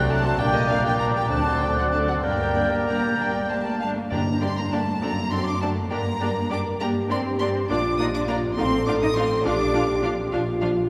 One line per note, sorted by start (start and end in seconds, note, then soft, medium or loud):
0.00 0.37 C2 medium
0.00 0.37 C3 medium
0.00 0.37 F#3 soft
0.00 0.37 A3 medium
0.00 0.37 D4 medium
0.00 0.36 D5 medium
0.00 0.38 F#5 medium
0.00 0.37 F#6 medium
0.08 0.23 F#3 soft
0.08 0.22 D4 soft
0.08 0.23 A4 soft
0.08 0.23 D5 soft
0.08 0.39 A5 medium
0.23 0.39 A3 soft
0.23 0.38 C4 soft
0.23 0.39 F#4 soft
0.23 0.39 C5 soft
0.38 1.28 A#1 medium
0.38 1.29 A#2 medium
0.38 0.53 G3 medium
0.38 1.26 G3 medium
0.38 1.26 A#3 medium
0.38 0.53 D4 medium
0.38 1.26 D4 medium
0.38 0.52 A#4 medium
0.38 1.26 D5 medium
0.38 2.20 D5 medium
0.38 0.53 D5 soft
0.38 0.54 G5 medium
0.38 1.26 G6 medium
0.53 0.69 A#3 soft
0.53 0.68 G4 soft
0.53 0.68 A#4 soft
0.53 0.70 D#5 medium
0.69 0.84 G3 soft
0.69 0.84 D4 soft
0.69 0.83 A#4 soft
0.69 0.84 D5 soft
0.69 0.84 F5 medium
0.83 0.99 A#3 soft
0.83 0.99 G4 soft
0.83 1.00 A#4 soft
0.83 1.00 G5 medium
0.99 1.14 G3 soft
0.99 1.14 D4 soft
0.99 1.13 A#4 soft
0.99 1.15 D5 soft
0.99 1.05 A#5 medium
1.14 1.30 A#3 soft
1.14 1.30 G4 soft
1.14 1.30 A#4 soft
1.14 1.30 G5 medium
1.30 2.24 D2 medium
1.30 2.24 D3 medium
1.30 2.24 F#3 soft
1.30 1.44 A3 soft
1.30 2.25 C4 soft
1.30 2.24 C4 soft
1.30 1.44 D4 soft
1.30 1.44 A4 soft
1.30 2.22 D5 soft
1.30 1.44 D5 soft
1.30 1.60 A5 medium
1.30 2.22 F#6 soft
1.45 1.61 C4 soft
1.45 1.61 F#4 soft
1.45 1.61 C5 soft
1.60 1.77 A3 soft
1.60 1.77 D4 soft
1.60 1.77 A4 soft
1.60 1.77 D5 soft
1.60 1.76 G5 medium
1.76 1.92 C4 soft
1.76 1.92 F#4 soft
1.76 1.92 C5 soft
1.76 1.83 F#5 medium
1.92 2.07 A3 soft
1.92 2.07 D4 soft
1.92 2.07 A4 soft
1.92 2.07 D5 soft
1.92 1.99 A5 medium
2.08 2.24 C4 soft
2.08 2.24 F#4 soft
2.08 2.24 C5 soft
2.08 2.15 F#5 soft
2.23 3.88 G1 soft
2.23 2.85 G2 soft
2.23 2.39 G3 soft
2.23 3.78 G3 soft
2.23 3.81 A#3 medium
2.23 3.81 A#3 soft
2.23 2.39 D4 soft
2.23 3.62 A#4 medium
2.23 2.39 A#4 soft
2.23 3.78 D5 soft
2.23 2.39 D5 soft
2.23 2.85 G5 medium
2.23 3.80 G6 soft
2.40 2.56 A#3 soft
2.40 2.56 G4 soft
2.40 2.54 A#4 soft
2.55 2.71 G3 soft
2.55 2.71 D4 soft
2.55 2.70 A#4 soft
2.55 2.71 D5 soft
2.70 2.86 A#3 soft
2.70 2.86 G4 soft
2.70 2.85 A#4 soft
2.86 3.01 G3 soft
2.86 3.15 A#3 soft
2.86 3.01 D4 soft
2.86 3.00 A#4 soft
2.86 3.01 D5 soft
2.86 3.15 A#5 medium
3.01 3.18 A#3 soft
3.01 3.17 G4 soft
3.01 3.17 A#4 soft
3.16 3.49 G3 soft
3.16 3.33 G3 soft
3.16 3.33 D4 soft
3.16 3.46 D5 soft
3.16 3.49 G5 medium
3.33 3.49 A#3 soft
3.48 3.64 G3 soft
3.48 3.79 A3 soft
3.48 3.64 D4 soft
3.48 3.55 C5 soft
3.48 3.80 A5 medium
3.65 3.81 A#3 soft
3.65 3.81 D5 soft
3.80 3.96 G3 soft
3.80 4.11 A3 soft
3.80 3.96 D4 soft
3.80 3.88 F5 medium
3.80 3.89 A5 medium
3.96 4.10 A#3 soft
4.11 4.91 G2 medium
4.11 4.98 G2 medium
4.11 4.19 A#3 soft
4.11 4.42 A#3 soft
4.11 4.19 D4 soft
4.11 4.98 D4 soft
4.11 4.20 G4 soft
4.11 4.20 D5 soft
4.11 4.42 A#5 medium
4.41 4.49 A#3 soft
4.41 4.48 C4 medium
4.41 4.49 D4 soft
4.41 4.50 G4 soft
4.41 4.50 D5 soft
4.41 4.57 C6 medium
4.57 4.63 A#3 soft
4.57 4.72 A#5 medium
4.71 5.01 A3 soft
4.71 4.80 A#3 soft
4.71 4.80 D4 soft
4.71 4.81 G4 soft
4.71 4.81 D5 soft
4.71 5.02 A5 medium
5.01 5.81 F#2 medium
5.01 5.31 A#3 medium
5.01 5.09 C4 soft
5.01 5.10 D4 soft
5.01 5.92 F#4 soft
5.01 5.10 A4 soft
5.01 5.11 D5 soft
5.01 5.32 A#5 medium
5.31 5.46 C4 medium
5.31 5.40 C4 soft
5.31 5.40 D4 soft
5.31 5.41 A4 soft
5.31 5.40 D5 soft
5.31 5.46 C6 medium
5.46 5.61 D4 medium
5.46 5.62 D6 medium
5.61 5.91 A3 soft
5.61 5.70 C4 soft
5.61 5.70 D4 soft
5.61 5.70 A4 soft
5.61 5.70 D5 soft
5.61 5.69 A5 medium
5.91 6.71 G2 medium
5.91 5.99 A#3 soft
5.91 6.51 A#3 medium
5.91 5.99 D4 soft
5.91 5.99 G4 soft
5.91 6.79 A#4 medium
5.91 5.99 D5 soft
5.91 6.50 A#5 medium
6.21 6.30 A#3 soft
6.21 6.30 D4 soft
6.21 6.29 G4 soft
6.21 6.30 D5 soft
6.50 6.59 A#3 soft
6.50 6.60 D4 soft
6.50 6.60 D4 medium
6.50 6.59 G4 soft
6.50 6.59 D5 soft
6.50 6.58 D6 medium
6.80 7.59 G2 medium
6.80 6.89 A#3 soft
6.80 7.10 A#3 medium
6.80 6.89 D4 soft
6.80 7.69 G4 medium
6.80 6.90 G4 soft
6.80 6.90 D5 soft
6.80 6.88 A#5 medium
7.10 7.18 A#3 soft
7.10 7.39 C4 medium
7.10 7.18 D4 soft
7.10 7.19 G4 soft
7.10 7.19 D5 soft
7.10 7.19 C6 medium
7.40 7.48 A#3 soft
7.40 7.69 C4 medium
7.40 7.48 D4 soft
7.40 7.49 G4 soft
7.40 7.49 D5 medium
7.40 7.48 C6 medium
7.69 8.47 A#1 medium
7.69 7.77 A#3 medium
7.69 7.77 D4 medium
7.69 7.98 D4 medium
7.69 7.78 F4 medium
7.69 8.57 F4 medium
7.69 7.78 D5 medium
7.69 7.98 D6 medium
7.99 8.07 A#3 medium
7.99 8.07 D4 soft
7.99 8.05 D#4 medium
7.99 8.08 F4 soft
7.99 8.08 D5 soft
7.99 8.05 D#6 medium
8.14 8.28 D4 medium
8.14 8.20 D6 medium
8.28 8.36 A#3 medium
8.28 8.58 A#3 medium
8.28 8.36 D4 medium
8.28 8.38 F4 medium
8.28 8.38 D5 soft
8.28 8.37 A#5 medium
8.57 9.35 A1 medium
8.57 8.65 F3 medium
8.57 8.87 C4 medium
8.57 8.65 D#4 medium
8.57 8.67 F4 soft
8.57 9.43 A4 medium
8.57 8.67 F5 medium
8.57 8.86 C6 medium
8.87 8.95 F3 medium
8.87 8.94 D4 medium
8.87 8.95 D#4 soft
8.87 8.95 F4 medium
8.87 8.96 F5 soft
8.87 8.93 D6 medium
9.02 9.08 D#4 medium
9.02 9.16 D#6 medium
9.16 9.24 F3 soft
9.16 9.45 C4 medium
9.16 9.24 D#4 soft
9.16 9.26 F4 medium
9.16 9.26 F5 medium
9.16 9.45 C6 medium
9.45 10.22 A#1 medium
9.45 9.53 F3 medium
9.45 10.03 D4 medium
9.45 9.53 D4 medium
9.45 9.54 F4 medium
9.45 10.33 G4 medium
9.45 9.55 F5 medium
9.45 10.03 D6 medium
9.73 9.81 F3 medium
9.73 9.81 D4 medium
9.73 9.84 F4 medium
9.73 9.83 F5 medium
10.03 10.11 F3 medium
10.03 10.11 D4 medium
10.03 10.12 F4 medium
10.03 10.13 F5 medium
10.32 10.89 A#1 medium
10.32 10.40 F3 medium
10.32 10.40 D4 medium
10.32 10.41 F4 medium
10.32 10.89 F4 medium
10.32 10.41 F5 medium
10.61 10.70 F3 medium
10.61 10.70 D4 medium
10.61 10.70 F4 medium
10.61 10.69 F5 medium